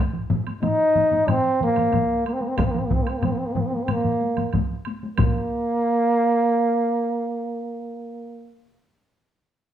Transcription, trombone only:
0.63 1.31 D#4 medium
1.30 1.62 C4 medium
1.63 2.23 A#3 medium
2.26 2.35 A#3 medium
2.33 2.43 C4 medium
2.41 2.50 A#3 medium
2.48 2.58 C4 medium
2.56 2.66 A#3 medium
2.65 2.72 C4 medium
2.71 2.80 A#3 medium
2.79 2.88 C4 medium
2.86 2.95 A#3 medium
2.94 3.04 C4 medium
3.02 3.11 A#3 medium
3.10 3.19 C4 medium
3.17 3.26 A#3 medium
3.25 3.33 C4 medium
3.32 3.40 A#3 medium
3.38 3.48 C4 medium
3.46 3.54 A#3 medium
3.53 3.62 C4 medium
3.60 3.68 A#3 medium
3.67 3.77 C4 medium
3.75 3.84 A#3 medium
3.83 3.93 C4 medium
3.91 4.53 A#3 medium
5.17 8.53 A#3 loud

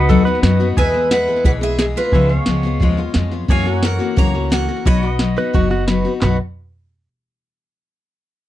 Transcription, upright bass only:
0.09 0.42 D#2 medium
0.43 0.76 F#2 loud
0.77 1.26 E2 medium
1.44 1.93 B1 medium
2.12 2.37 C#2 medium
2.47 2.76 C#2 medium
2.80 3.10 D#2 medium
3.15 3.44 F2 medium
3.49 3.98 F#2 medium
4.17 4.66 C#2 medium
4.86 5.35 B1 medium
5.54 6.03 F#1 medium
6.23 6.38 B1 medium

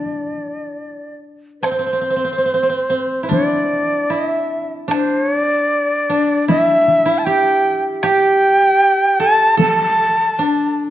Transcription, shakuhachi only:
0.00 1.17 D5 medium
1.62 3.26 C5 medium
3.31 4.14 D5 medium
4.12 4.71 E5 medium
4.91 5.19 C5 loud
5.19 5.36 C#5 loud
5.36 6.45 D5 loud
6.49 7.20 E5 loud
7.18 7.26 A5 medium
7.25 7.83 G5 loud
8.04 9.23 G5 loud
9.22 9.60 A5 loud
9.61 10.76 A5 loud

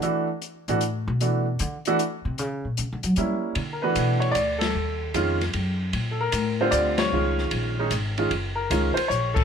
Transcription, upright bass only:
0.68 1.05 A2 medium
1.08 1.56 B2 medium
1.60 1.76 D3 loud
2.25 2.39 C3 medium
2.39 2.64 C#3 medium
2.65 2.78 A#2 medium
2.79 2.91 C#3 medium
2.93 3.03 D3 medium
3.04 3.17 F#3 medium
3.17 3.33 G3 medium
3.56 3.95 D3 medium
3.96 4.34 B2 medium
4.35 4.74 D2 medium
4.75 5.13 D#2 medium
5.15 5.53 F2 medium
5.54 5.93 F#2 medium
5.93 6.32 A#2 medium
6.33 6.71 A2 medium
6.72 7.11 D2 medium
7.12 7.51 C#2 medium
7.52 7.90 A#1 medium
7.91 8.30 G#1 medium
8.31 8.69 F#1 medium
8.70 8.95 C#2 medium
8.97 muted upright bass stroke soft
9.10 9.44 A#1 medium

